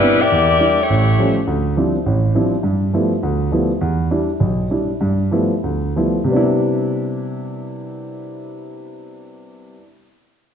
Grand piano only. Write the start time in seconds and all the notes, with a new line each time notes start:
0.01 B3 C4 D4 E4
0.32 E2
0.59 G3 D4 E4
0.90 A1
1.18 F3 G3 A3 C#4
1.47 D2
1.77 F3 G3 C4 D4 E4
2.06 A1
2.35 F3 G3 C4 D4 E4
2.63 G2
2.93 F3 G3 A3 B3 E4
3.23 D2
3.52 F3 G3 A3 B3 E4
3.81 E2
4.11 G3 D4 E4
4.40 B1
4.71 G3 D4 E4
5.01 G2
5.31 F3 G3 A3 B3 E4
5.64 D2
5.96 F3 G3 A3 B3 E4
6.24 C3 G3
6.30 B3 D4
6.36 E4